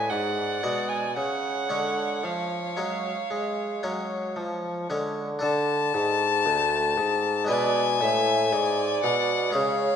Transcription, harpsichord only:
0.00 0.35 G#3 soft
0.00 0.35 F#4 soft
0.00 0.35 D5 soft
0.11 0.60 G#2 medium
0.63 1.13 B2 soft
0.63 1.02 G#3 soft
0.63 1.02 F#4 soft
0.63 1.02 D5 soft
1.17 1.66 C#3 soft
1.69 2.20 D3 soft
1.69 2.47 G#3 soft
1.69 2.47 C#4 soft
1.69 2.47 C#5 soft
2.23 2.73 F3 soft
2.77 3.08 F#3 medium
2.77 3.15 G#3 soft
2.77 3.16 C#4 soft
2.77 3.16 C#5 soft
3.31 3.79 G#3 soft
3.83 4.32 F#3 soft
3.83 4.60 G#3 soft
3.83 4.60 C#4 soft
3.83 4.60 C#5 soft
4.36 4.85 F3 soft
4.90 5.38 D3 soft
4.90 5.27 G#3 soft
4.90 5.28 C#4 soft
4.90 5.28 C#5 soft
5.39 5.90 D3 medium
5.39 7.44 D4 medium
5.39 7.45 A4 medium
5.94 6.42 G#2 medium
6.46 6.94 D2 medium
6.98 7.45 G#2 medium
7.45 9.48 G#3 medium
7.45 9.49 D4 medium
7.45 9.50 B4 medium
7.49 7.97 B2 medium
8.01 8.48 A2 medium
8.53 9.00 G#2 medium
9.04 9.51 B2 medium
9.50 9.96 G#3 medium
9.50 9.96 C#4 medium
9.50 9.96 G#4 medium
9.55 9.96 C#3 medium

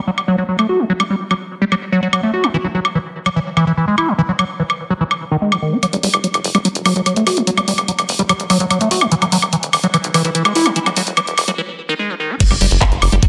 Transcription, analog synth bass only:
5.93 6.00 F#1 medium
6.03 6.10 F#1 medium
6.14 6.21 F#1 medium
6.34 6.41 F#1 medium
6.44 6.52 F#1 loud
6.55 6.62 F#1 medium
6.75 6.82 E1 medium
6.86 6.93 F#1 loud
6.96 7.03 E1 medium
7.16 7.23 F#1 medium
7.27 7.34 F#1 loud
7.37 7.44 F#1 medium
7.57 7.65 F#1 medium
7.68 7.75 F#1 medium
7.78 7.85 F#1 medium
7.99 8.06 F#1 medium
8.09 8.16 F#1 loud
8.19 8.26 F#1 medium
8.40 8.47 E1 medium
8.50 8.57 F#1 loud
8.60 8.67 E1 medium
8.81 8.88 F#1 medium
8.91 8.98 F#1 loud
9.01 9.08 F#1 medium
9.22 9.29 E1 medium
9.32 9.39 E1 loud
9.42 9.49 E1 medium
9.63 9.70 E1 medium
9.73 9.80 E1 loud
9.83 9.91 E1 medium
10.04 10.11 B1 medium
10.25 10.32 B1 medium
10.45 10.52 E1 medium
10.55 10.63 E1 loud
10.66 10.73 E1 medium
10.86 10.93 E1 medium
10.96 11.04 E1 loud
11.07 11.14 E1 medium
11.27 11.34 E1 medium
11.38 11.45 E1 loud
11.48 11.55 E1 medium
12.51 12.58 F#1 medium
12.61 12.68 F#1 loud
12.71 12.78 F#1 medium
12.92 12.99 F#1 medium
13.02 13.09 F#1 loud
13.12 13.19 F#1 medium

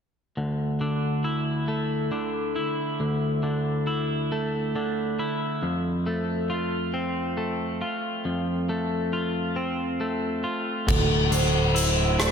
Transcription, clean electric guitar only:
0.37 2.57 D2 soft
0.81 2.10 D3 soft
1.24 2.55 E4 soft
1.68 4.32 A3 soft
2.12 3.42 D3 soft
2.56 3.86 E4 soft
3.00 5.20 D2 soft
3.43 4.74 D3 soft
3.87 5.18 E4 soft
4.32 6.06 A3 soft
4.76 5.64 D3 soft
5.19 5.64 E4 soft
5.63 7.82 F2 soft
6.06 7.37 A3 soft
6.50 7.80 F4 soft
6.94 9.13 C4 soft
7.37 8.68 A3 soft
7.82 9.12 F4 soft
8.25 10.45 F2 soft
8.69 9.99 A3 soft
9.13 10.43 F4 soft
9.56 10.88 C4 soft
10.01 10.88 A3 soft
10.44 10.88 F4 soft
10.87 12.31 D2 medium
11.31 12.31 D3 soft
11.75 12.31 E4 medium
12.19 12.31 A3 medium

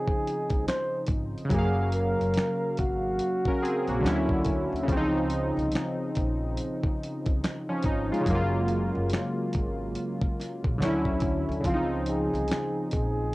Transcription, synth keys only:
0.00 1.44 C#3 medium
0.00 1.46 F3 medium
0.00 1.48 C4 medium
0.00 1.51 D#4 loud
1.45 3.97 C#3 medium
1.49 3.99 F#3 medium
1.54 3.18 A#3 medium
1.58 3.20 F5 medium
3.48 3.62 C#4 medium
3.48 3.62 A#4 medium
3.63 3.87 C4 medium
3.63 3.87 G#4 medium
3.89 4.29 A#3 medium
3.89 4.28 F#4 medium
4.00 4.87 D3 medium
4.00 4.88 F#3 medium
4.05 4.89 C#4 medium
4.05 4.90 E4 medium
4.83 7.35 C#3 medium
4.88 6.95 F3 medium
4.92 6.98 C4 medium
4.97 7.00 D#4 medium
7.69 7.84 F3 medium
7.69 7.84 C#4 medium
7.86 8.10 D#4 medium
8.12 8.52 G#3 medium
8.12 8.34 F4 medium
8.21 10.73 C#3 medium
8.26 10.75 F#3 medium
8.30 10.78 A#3 medium
8.35 10.80 F4 medium
10.78 11.63 D3 medium
10.78 11.65 F#3 medium
10.83 11.66 C#4 medium
10.83 11.67 E4 medium
11.60 13.35 C#3 medium
11.65 13.35 F3 medium
11.69 13.35 C4 medium
11.74 13.35 D#4 medium

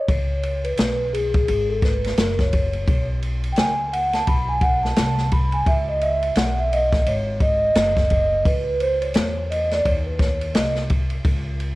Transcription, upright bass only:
0.09 0.75 C#2 medium
0.78 1.45 B1 medium
1.48 2.15 G#1 loud
2.18 2.84 F#1 medium
2.88 3.54 B1 medium
3.58 4.24 C#2 medium
4.28 4.94 B1 medium
4.98 5.64 C2 medium
5.67 6.33 C#2 medium
6.36 7.03 B1 medium
7.06 7.73 G#1 loud
7.76 8.42 F#1 loud
8.45 9.12 C#2 loud
9.15 9.82 E2 medium
9.86 10.52 D#2 loud
10.55 11.22 C2 medium
11.25 11.75 C#2 medium

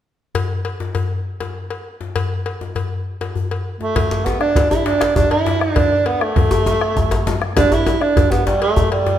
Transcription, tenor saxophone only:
3.81 4.26 A3 medium
4.25 4.39 B3 medium
4.40 4.68 D4 medium
4.70 4.87 E4 medium
4.86 5.16 D4 medium
5.16 5.33 D4 medium
5.31 5.62 E4 medium
5.60 6.07 D4 medium
6.06 6.23 B3 medium
6.21 7.41 A3 medium
7.58 7.75 D4 medium
7.73 8.03 E4 medium
8.01 8.32 D4 medium
8.31 8.45 B3 medium
8.46 8.60 G3 medium
8.62 8.90 A3 medium
8.91 9.19 G3 medium

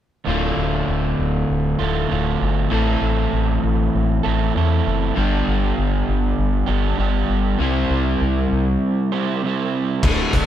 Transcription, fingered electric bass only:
0.27 0.51 D1 medium
0.57 0.81 D1 medium
0.88 1.12 D1 medium
1.19 1.43 D1 medium
1.49 1.74 D1 medium
1.79 2.04 D1 medium
2.11 2.35 D1 medium
2.41 2.65 G1 medium
2.71 2.96 A1 medium
3.01 3.26 A1 medium
3.33 3.57 A1 medium
3.64 3.88 A1 medium
3.95 4.19 A1 medium
4.26 4.49 A1 medium
4.55 4.79 E2 medium
4.86 5.10 F#1 medium
5.17 5.41 G1 medium
5.47 5.71 G1 medium
5.78 6.02 G1 medium
6.08 6.32 G1 medium
6.38 6.62 G1 medium
6.68 6.93 G1 medium
6.98 7.23 G1 medium
7.29 7.53 G1 medium
7.59 7.84 C2 medium
7.90 8.15 C2 medium
8.21 8.45 C2 medium
8.52 8.76 C2 medium
10.03 10.23 D1 medium
10.34 10.46 D1 medium

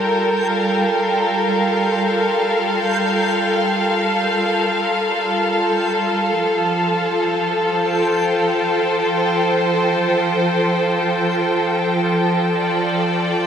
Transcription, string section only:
0.00 6.38 G3 medium
0.00 13.47 F4 medium
0.00 13.47 A4 medium
0.00 6.38 A#4 medium
0.00 0.69 G5 medium
0.40 9.45 F5 medium
6.38 13.47 F3 medium
7.70 12.86 C5 medium
7.85 13.47 G5 medium
12.55 13.47 D5 medium

